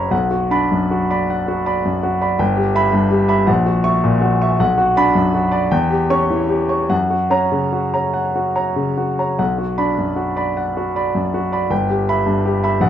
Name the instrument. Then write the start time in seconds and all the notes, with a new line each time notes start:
grand piano
Already playing: C#3 C#4 C#5 F#5 A#5 B5
0.11 B1 F#5
0.31 F#4
0.50 D4 D5 B5
0.72 F#2
0.91 F#4
1.10 D5 B5
1.30 F#5
1.48 F#4
1.66 D5 B5
1.85 F#2
2.03 F#4
2.21 D5 B5
2.39 G1 G5
2.57 G4
2.75 E5 B5
2.93 G2
3.11 G4
3.28 E5 B5
3.47 A#1 F#5
3.66 F#4
3.84 E5 C#6
4.04 A#2
4.22 F#4
4.41 E5 C#6
4.60 B1 F#5
4.78 F#4
4.97 D4 D5 B5
5.15 F#2
5.34 F#4
5.51 D5 B5
5.71 E2 G5
5.91 G4
6.10 C#4 C#5 C#6
6.30 E3
6.49 G4
6.69 C#5 C#6
6.90 F#2 F#5
7.10 F#4
7.30 C#4 C#5 A#5
7.52 C#3
7.72 F#4
7.94 C#5 A#5
8.14 F#5
8.35 F#4
8.55 C#5 A#5
8.76 C#3
8.97 F#4
9.19 C#5 A#5
9.39 B1 F#5
9.58 F#4
9.78 D4 D5 B5
9.98 F#2
10.16 F#4
10.36 D5 B5
10.57 F#5
10.77 F#4
10.96 D5 B5
11.15 F#2
11.34 F#4
11.52 D5 B5
11.70 G1 G5
11.90 G4
12.09 E5 B5
12.26 G2
12.46 G4
12.63 E5 B5
12.81 A#1 F#5